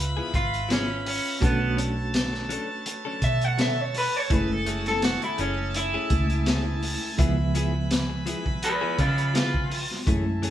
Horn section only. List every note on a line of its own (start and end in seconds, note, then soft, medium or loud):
0.00 1.39 F4 medium
0.00 1.39 B4 medium
0.00 1.39 E5 medium
0.00 1.39 B5 medium
1.41 7.14 A4 medium
1.41 4.27 B4 medium
1.41 4.27 C#5 medium
1.41 7.14 A5 medium
4.30 7.16 G#4 medium
4.30 7.16 E5 medium
4.30 7.16 G#5 medium
7.18 9.90 B4 medium
7.18 9.90 E5 medium
7.18 9.90 G#5 medium
7.18 9.90 B5 medium
10.07 10.50 A4 medium
10.07 10.50 E5 medium
10.07 10.50 G#5 medium
10.07 10.50 A5 medium